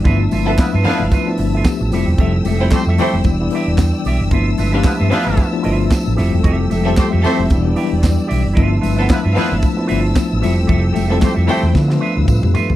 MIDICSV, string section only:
0, 0, Header, 1, 2, 480
1, 0, Start_track
1, 0, Tempo, 531444
1, 53, Time_signature, 4, 2, 24, 8
1, 11523, End_track
2, 0, Start_track
2, 0, Title_t, "String section"
2, 0, Program_c, 0, 48
2, 37, Note_on_c, 0, 71, 85
2, 39, Note_on_c, 0, 81, 71
2, 40, Note_on_c, 0, 76, 75
2, 40, Note_on_c, 0, 88, 91
2, 1710, Note_off_c, 0, 71, 0
2, 1711, Note_off_c, 0, 81, 0
2, 1712, Note_off_c, 0, 76, 0
2, 1728, Note_on_c, 0, 79, 78
2, 1730, Note_on_c, 0, 69, 84
2, 2920, Note_off_c, 0, 79, 0
2, 2921, Note_off_c, 0, 69, 0
2, 2925, Note_on_c, 0, 74, 76
2, 2933, Note_on_c, 0, 79, 70
2, 3878, Note_on_c, 0, 81, 81
2, 3881, Note_off_c, 0, 74, 0
2, 3881, Note_on_c, 0, 76, 73
2, 3883, Note_on_c, 0, 71, 78
2, 3885, Note_off_c, 0, 79, 0
2, 5550, Note_off_c, 0, 81, 0
2, 5552, Note_off_c, 0, 76, 0
2, 5553, Note_off_c, 0, 71, 0
2, 5578, Note_on_c, 0, 79, 81
2, 5579, Note_on_c, 0, 69, 88
2, 6766, Note_off_c, 0, 69, 0
2, 6774, Note_on_c, 0, 74, 83
2, 7693, Note_off_c, 0, 88, 0
2, 7714, Note_off_c, 0, 79, 0
2, 7725, Note_off_c, 0, 74, 0
2, 7740, Note_on_c, 0, 81, 76
2, 7740, Note_on_c, 0, 88, 93
2, 7741, Note_on_c, 0, 76, 72
2, 7748, Note_on_c, 0, 71, 82
2, 9400, Note_off_c, 0, 76, 0
2, 9400, Note_off_c, 0, 81, 0
2, 9404, Note_off_c, 0, 71, 0
2, 9413, Note_on_c, 0, 69, 88
2, 9417, Note_on_c, 0, 79, 87
2, 10586, Note_off_c, 0, 88, 0
2, 10600, Note_off_c, 0, 69, 0
2, 10602, Note_off_c, 0, 79, 0
2, 10603, Note_on_c, 0, 71, 74
2, 10606, Note_on_c, 0, 88, 86
2, 10611, Note_on_c, 0, 77, 69
2, 11523, Note_off_c, 0, 71, 0
2, 11523, Note_off_c, 0, 77, 0
2, 11523, Note_off_c, 0, 88, 0
2, 11523, End_track
0, 0, End_of_file